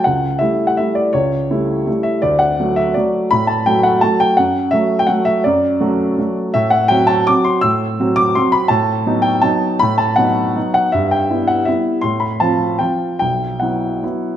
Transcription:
X:1
M:3/4
L:1/16
Q:1/4=164
K:D
V:1 name="Upright piano"
f4 e3 f e2 d2 | c8- c2 e2 | d2 f4 e2 d4 | b2 a2 g2 f2 a2 g2 |
f4 e3 g f2 e2 | d8- d2 z2 | [K:Bphr] e2 f2 g2 a2 d'2 c'2 | e'6 d'2 c'2 b2 |
a6 g2 a4 | b2 a2 f6 f2 | e2 g4 f2 e4 | c'2 b2 a4 g4 |
g4 f8 |]
V:2 name="Upright piano"
C,,4 [G,A,E]4 [G,A,E]4 | C,,4 [G,A,E]4 [G,A,E]4 | D,,4 [F,A,F]4 [F,A,F]4 | A,,4 [F,A,F]4 [F,A,F]4 |
F,,4 [F,A,F]4 [F,A,F]4 | F,,4 [F,A,F]4 [F,A,F]4 | [K:Bphr] A,,4 [F,CF]4 [F,CF]4 | A,,4 [F,CF]4 [F,CF]4 |
A,,4 [F,B,^D]4 [F,B,D]4 | A,,4 [F,B,^D]4 [F,B,D]4 | G,,4 [G,B,E]4 [G,B,E]4 | A,,4 [=F,C=F]4 [F,CF]4 |
B,,,4 [F,B,E]4 [F,B,E]4 |]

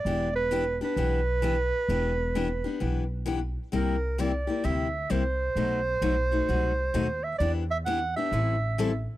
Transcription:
X:1
M:4/4
L:1/8
Q:"Swing" 1/4=131
K:Em
V:1 name="Clarinet"
d B2 B4- B- | B6 z2 | _B2 d2 e2 c2- | c6- c e |
d e f e4 z |]
V:2 name="Steel-string acoustic guitar"
[E,B,DG] z [E,B,DG] [B,DG] [E,B,DG] z [E,B,DG] z | [E,B,DG] z [E,B,DG] [B,DG] [E,B,DG] z [E,B,DG] z | [C,G,_B,EG] z [C,G,B,EG] [B,EG] [C,G,B,EG] z [C,G,B,EG] z | [B,,F,A,^DF] z [B,,F,A,DF] [A,DF] [B,,F,A,DF] z [B,,F,A,DF] z |
[E,B,DG] z [E,B,DG] [B,DG] [E,G,CEA] z [E,G,CEA] z |]
V:3 name="Upright bass" clef=bass
E,,,4 B,,,4 | E,,,4 B,,,4 | C,,4 D,,2 C,,2 | B,,,2 B,,,2 C,,2 ^D,,2 |
E,,4 A,,,4 |]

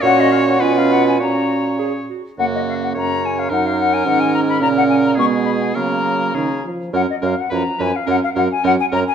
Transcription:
X:1
M:2/4
L:1/16
Q:1/4=105
K:F#
V:1 name="Flute"
f d e f g e f g | a4 z4 | f d e f a2 g e | f e f g f g a b |
a f g a c'2 b g | a6 z2 | f d e f a2 g e | f e f g f g a g |]
V:2 name="Oboe"
c4 B4 | c6 z2 | F4 c4 | A8 |
A4 G4 | A4 G2 z2 | A2 A2 B2 B2 | A2 A2 A2 A2 |]
V:3 name="Clarinet"
F4 E4 | F4 G2 F2 | A,4 C4 | D4 C4 |
C4 B,4 | A,4 C2 z2 | C2 C2 C2 C2 | C2 C2 C2 C2 |]
V:4 name="French horn" clef=bass
C4 C4 | C6 z2 | C,8 | F,4 D,4 |
C,4 G,4 | F,4 D,2 E,2 | F,2 F,2 E,2 E,2 | F,2 F,2 F,2 F,2 |]
V:5 name="Bassoon" clef=bass
A,,4 B,,4 | A,,6 z2 | F,,4 F,,4 | F,,4 G,,4 |
A,,4 B,,4 | C,4 C,2 z2 | F,,2 F,,2 F,,2 F,,2 | F,,2 F,,2 F,,2 F,,2 |]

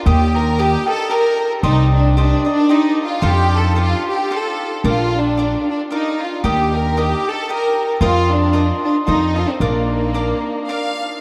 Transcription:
X:1
M:3/4
L:1/16
Q:"Swing" 1/4=113
K:Bb
V:1 name="Cavaquinho"
[GBeg]4 [GBeg]2 [Beg]2 [GBeg]4 | [Gcde]4 [Gcde]2 [cde]2 [Gcde]4 | [FAcf]4 [FAcf]4 [FAcf]4 | [DBdf]4 [DBdf]4 [DBdf]4 |
[GBeg]4 [GBeg]4 [GBeg]4 | [FBce]4 [FBce]4 [FAce]2 [Ace]2 | [DBdf]4 [DBdf]4 [DBdf]4 |]
V:2 name="Violin section"
G2 B2 G2 A2 B3 z | E2 D2 D2 D2 E2 F2 | G2 A2 F2 G2 A3 z | F2 D4 D2 E2 F2 |
G2 B2 G2 A2 B3 z | F2 D4 D2 E2 F C | B,8 f4 |]
V:3 name="Upright bass" clef=bass
E,,8 z4 | C,,8 z4 | F,,8 z4 | B,,,8 z4 |
E,,8 z4 | F,,8 F,,4 | B,,,8 z4 |]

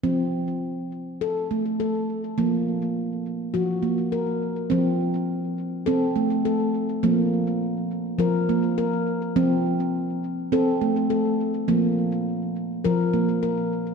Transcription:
X:1
M:4/4
L:1/8
Q:"Swing 16ths" 1/4=103
K:F
V:1 name="Handpan"
C2 z2 A A, A2 | B,2 z2 _G B, B2 | C2 z2 A A, A2 | B,2 z2 B B, B2 |
C2 z2 A A, A2 | B,2 z2 B B, B2 |]
V:2 name="Handpan" clef=bass
F,8 | F,4 F,4 | F,4 C4 | F,4 F,4 |
F,4 C4 | F,4 F,4 |]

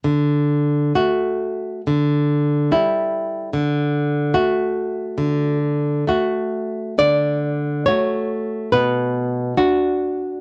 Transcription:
X:1
M:2/4
L:1/8
Q:1/4=69
K:D
V:1 name="Nylon-string guitar"
D,2 [A,F]2 | D,2 [G,E]2 | D,2 [A,F]2 | D,2 [A,F]2 |
[D,d]2 [A,Fc]2 | [B,,B]2 [DF]2 |]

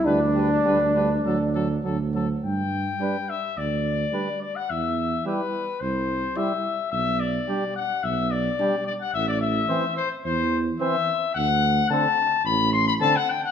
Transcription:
X:1
M:4/4
L:1/16
Q:1/4=108
K:G
V:1 name="Trumpet"
B2 B2 B2 B2 A2 A2 A2 A2 | g6 e2 d6 d f | e4 B4 c4 e4 | e2 d4 f2 e2 d4 d f |
e d e4 c2 c3 z e4 | f4 a4 b2 c' b a f g f |]
V:2 name="Trumpet"
D12 z4 | z4 B4 z4 B4 | z4 G4 z4 G4 | z4 G4 z4 G4 |
z4 c4 z4 c4 | z4 A4 z4 A4 |]
V:3 name="French horn"
D12 z4 | z4 D4 z4 D4 | z4 E4 z4 E4 | z4 D4 z4 D4 |
z4 C4 z4 C4 | z4 C4 z4 C4 |]
V:4 name="Trombone" clef=bass
G,2 G,2 G,2 G,2 F,2 F,2 F,2 F,2 | z4 G,4 z4 G,4 | z4 G,4 z4 G,4 | z4 G,4 z4 G,4 |
z4 E,4 z4 E,4 | z4 D,4 z4 D,4 |]
V:5 name="Tuba" clef=bass
D,,4 D,,4 D,,4 D,,4 | G,,4 z4 D,,4 z4 | E,,4 z4 C,,4 z4 | B,,,4 z4 B,,,4 z4 |
A,,,4 z4 E,,4 z4 | D,,4 z4 A,,,4 z4 |]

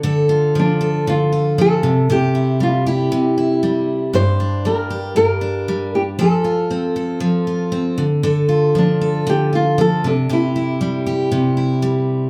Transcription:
X:1
M:4/4
L:1/8
Q:1/4=117
K:Dm
V:1 name="Nylon-string guitar"
z2 D2 F2 A2 | G2 F E4 z | c2 B2 B3 G | A4 z4 |
z2 D2 G F A D | E6 z2 |]
V:2 name="Steel-string acoustic guitar"
[D,A] F F, A D, F F, C, | [C,G] E G, G C, E G,2 | [G,,G] D G, G G,, D G,2 | [F,A] F C A F, F C D, |
[D,A] F F, A D, F F, C, | [C,G] E G, G C, E G,2 |]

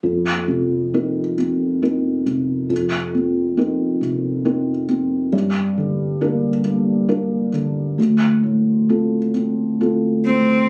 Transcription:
X:1
M:3/4
L:1/8
Q:1/4=68
K:Fmix
V:1 name="Cello"
z6 | z6 | z6 | z4 z C |]
V:2 name="Felt piano"
F,, C, [CEB] C [CEB] C, | F,, C [CEB] C, [CEB] C | G,, D, [B,DB] B, [B,DB] D, | D,, A,, [CFA] C [CFA] A,, |]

